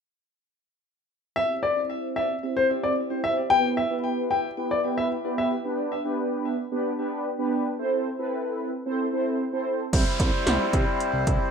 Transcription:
1.36 analog polysynth C4 E4 G4 C5, grand piano E5
1.63 grand piano D5
1.76 analog polysynth C4 E4 G4 C5
2.16 grand piano E5
2.43 analog polysynth C4 E4 G4 C5
2.57 grand piano C5
2.70 analog polysynth C4 E4 G4 C5
2.83 grand piano D5
3.10 analog polysynth C4 E4 G4 C5
3.24 grand piano E5
3.50 analog polysynth B3 E4 G4 B4, grand piano G5
3.77 grand piano E5
3.90 analog polysynth B3 E4 G4 B4
4.31 grand piano G5
4.57 analog polysynth B3 E4 G4 B4
4.71 grand piano D5
4.84 analog polysynth B3 E4 G4 B4
4.98 grand piano E5
5.24 analog polysynth B3 E4 G4 B4
5.38 grand piano E5
5.64 analog polysynth B3 D4 G4 B4
6.05 analog polysynth B3 D4 G4 B4
6.72 analog polysynth B3 D4 G4 B4
6.99 analog polysynth B3 D4 G4 B4
7.39 analog polysynth B3 D4 G4 B4
7.79 analog polysynth C4 E4 A4 C5
8.19 analog polysynth C4 E4 A4 B4
8.86 analog polysynth C4 E4 A4 C5
9.13 analog polysynth C4 E4 A4 C5
9.53 analog polysynth C4 E4 A4 C5
9.93 analog synth bass C2, accordion G3 C4 E4 C5, kick, closed hi-hat, crash, downlifter
10.20 analog synth bass C2, kick, closed hi-hat
10.47 analog synth bass C2, snare, closed hi-hat
10.73 analog synth bass C3, kick, closed hi-hat
11.00 closed hi-hat
11.13 analog synth bass C2
11.27 analog synth bass C2, kick, closed hi-hat

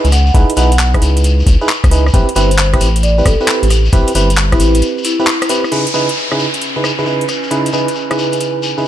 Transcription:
0.05 analog synth bass C#2, closed hi-hat, shekere
0.12 vibraphone F#5, cross-stick, open hi-hat, shekere
0.26 vibraphone F#5, shekere
0.34 analog synth bass C#2, fm electric piano D#4 E4 G#4 B4, kick, closed hi-hat, shekere
0.50 closed hi-hat
0.57 analog synth bass B1, fm electric piano D#4 E4 G#4 B4, vibraphone F#5, open hi-hat, shekere
0.71 vibraphone F#5, closed hi-hat, shekere
0.79 clap, shekere
0.94 fm electric piano D#4 E4 G#4 B4, kick, cross-stick, closed hi-hat
1.02 analog synth bass C#2, open hi-hat, shekere
1.16 closed hi-hat, shekere
1.24 closed hi-hat, shekere
1.40 shekere
1.47 analog synth bass C#2, kick, open hi-hat, shekere
1.61 fm electric piano D#4 E4 G#4 B4, shekere
1.69 clap, shekere
1.84 analog synth bass C#2, kick, cross-stick, closed hi-hat, shekere
1.91 fm electric piano D#4 E4 G#4 B4, open hi-hat, shekere
2.06 cross-stick, shekere
2.14 analog synth bass A1, fm electric piano C4 E4 G4 B4, kick, closed hi-hat, shekere
2.29 closed hi-hat
2.36 analog synth bass G1, fm electric piano C4 E4 G4 B4, vibraphone C5, open hi-hat, shekere
2.51 vibraphone C5, closed hi-hat, shekere
2.58 clap, shekere
2.73 fm electric piano C4 E4 G4 B4, kick, cross-stick, closed hi-hat
2.81 analog synth bass A1, open hi-hat, shekere
2.96 closed hi-hat, shekere
3.03 vibraphone D5, closed hi-hat, shekere
3.18 fm electric piano C4 E4 G4 B4, shekere
3.26 analog synth bass A1, vibraphone A4, kick, cross-stick, open hi-hat, shekere
3.40 fm electric piano C4 E4 G4 B4, vibraphone A4, shekere
3.48 fm electric piano C4 E4 G4 B4, vibraphone G4, clap, shekere
3.63 analog synth bass A1, vibraphone G4, closed hi-hat, shekere
3.70 cross-stick, open hi-hat, shekere
3.85 shekere
3.92 analog synth bass A1, fm electric piano C4 E4 G4 B4, kick, closed hi-hat, shekere
4.07 closed hi-hat, shekere
4.15 analog synth bass G1, fm electric piano C4 E4 G4 B4, open hi-hat, shekere
4.30 closed hi-hat, shekere
4.37 clap, shekere
4.52 fm electric piano C4 E4 G4 B4, vibraphone E4, kick, cross-stick, closed hi-hat, shekere
4.60 analog synth bass A1, vibraphone E4, open hi-hat, shekere
4.75 closed hi-hat, shekere
4.82 closed hi-hat, shekere
4.98 shekere
5.04 vibraphone E4, open hi-hat, shekere
5.20 fm electric piano C4 E4 G4 B4, shekere
5.27 clap, shekere
5.42 cross-stick, closed hi-hat, shekere
5.49 fm electric piano C4 E4 G4 B4, open hi-hat, shekere
5.64 cross-stick, shekere
5.71 fm electric piano C#3 D#4 E4 G#4 B4, ambient pad C#4, closed hi-hat, crash, downlifter, shekere
5.87 closed hi-hat, shekere
5.94 fm electric piano C#3 D#4 E4 G#4 B4, shekere
6.09 closed hi-hat, shekere
6.17 ambient pad E4, shekere
6.24 ambient pad B4
6.31 fm electric piano C#3 D#4 E4 G#4 B4, cross-stick, shekere
6.39 shekere
6.54 closed hi-hat, shekere
6.61 closed hi-hat, shekere
6.76 fm electric piano C#3 D#4 E4 G#4 B4
6.84 cross-stick, shekere
6.99 fm electric piano C#3 D#4 E4 G#4 B4, shekere
7.06 fm electric piano C#3 D#4 E4 G#4 B4, shekere
7.12 ambient pad G#5
7.21 closed hi-hat
7.29 cross-stick, closed hi-hat, shekere
7.43 shekere
7.51 fm electric piano C#3 D#4 E4 G#4 B4, closed hi-hat, shekere
7.66 closed hi-hat, shekere
7.73 fm electric piano C#3 D#4 E4 G#4 B4, shekere
7.88 closed hi-hat, shekere
7.95 shekere
8.11 fm electric piano C#3 D#4 E4 G#4 B4, cross-stick, closed hi-hat, shekere
8.18 shekere
8.32 closed hi-hat, shekere
8.40 closed hi-hat, shekere
8.63 shekere
8.78 fm electric piano C#3 D#4 E4 G#4 B4, shekere

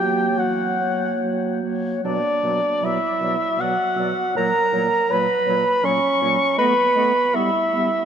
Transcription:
Already playing: french horn F#3, clarinet A#3, bassoon G4, flute C#5, oboe G5
0.38 french horn F#3, bassoon F#4, oboe F#5
0.78 clarinet A#3, flute C#5
1.21 french horn F#3
1.63 clarinet A#3, flute C#5
2.03 french horn B2, clarinet F#3, bassoon D4, flute D5, oboe D5
2.43 french horn B2, clarinet F#3, flute D5
2.82 french horn B2, clarinet F#3, bassoon E4, flute D5, oboe E5
3.20 french horn B2, clarinet F#3, flute D5
3.58 french horn B2, clarinet F#3, bassoon F#4, flute D5, oboe F#5
3.96 french horn B2, clarinet F#3, flute D5
4.35 french horn A#2, clarinet F#3, bassoon A#4, flute C#5, oboe A#5
4.72 french horn A#2, clarinet F#3, flute C#5
5.08 french horn A#2, bassoon B4, flute C#5
5.12 clarinet F#3, oboe B5
5.45 french horn A#2, clarinet F#3, flute C#5
5.83 french horn A#2, clarinet F#3, bassoon C#4, flute C#5, oboe C#6
6.19 french horn A#2, clarinet F#3, flute C#5
6.56 french horn A3, clarinet B3, bassoon B4, flute D#5, oboe B5
6.95 french horn A3, clarinet B3, flute D#5
7.34 french horn G3, clarinet B3, bassoon E4, flute E5, oboe E5
7.73 french horn G3, clarinet B3, flute E5

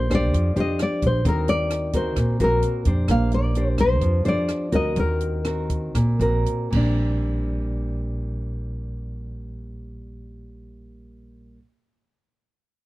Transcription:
Already playing: upright bass A#1, nylon-string guitar A#3 C5
0.10 nylon-string guitar D4 G4 C5, kick, cross-stick, closed hi-hat
0.15 nylon-string guitar D5
0.33 upright bass F2, nylon-string guitar F3, kick, closed hi-hat
0.56 upright bass F2, nylon-string guitar D4 G4 C5, closed hi-hat
0.60 nylon-string guitar D#5
0.79 nylon-string guitar D5, cross-stick, closed hi-hat
1.02 upright bass A#1, kick, closed hi-hat
1.07 nylon-string guitar C5
1.25 upright bass D#2, nylon-string guitar D#3 C4 F#4 A#4, kick, closed hi-hat
1.48 nylon-string guitar D5, closed hi-hat
1.70 cross-stick, closed hi-hat
1.93 nylon-string guitar C4 F#4 A#4 C5, kick, closed hi-hat
2.16 upright bass A#1, nylon-string guitar A#2, kick, cross-stick, closed hi-hat
2.40 upright bass A#1, nylon-string guitar C4 F#4 A#4, closed hi-hat
2.62 closed hi-hat
2.85 upright bass F2, nylon-string guitar D4 G4 C5, kick, closed hi-hat
3.08 upright bass A#1, nylon-string guitar A#3 F5, kick, cross-stick, closed hi-hat
3.31 nylon-string guitar D5, closed hi-hat
3.55 nylon-string guitar D4 G4 C5, closed hi-hat
3.78 nylon-string guitar C5, kick, cross-stick, closed hi-hat
4.01 upright bass F2, nylon-string guitar F3, kick, closed hi-hat
4.25 upright bass F2, nylon-string guitar D4 G4 C5 D5, closed hi-hat
4.49 cross-stick, closed hi-hat
4.72 upright bass D2, nylon-string guitar C4 F#4 A#4 D#5, kick, closed hi-hat
4.96 upright bass D#2, nylon-string guitar D#3 A#4, kick, closed hi-hat
5.21 closed hi-hat
5.45 nylon-string guitar C4 F#4 A#4, cross-stick, closed hi-hat
5.70 kick, closed hi-hat
5.95 upright bass A#1, nylon-string guitar A#2, kick, cross-stick, closed hi-hat
6.19 upright bass A#1, nylon-string guitar C4 F#4 A#4, closed hi-hat
6.46 closed hi-hat
6.70 upright bass A#1, nylon-string guitar A#2 G3, kick, crash
6.75 nylon-string guitar C4 D4

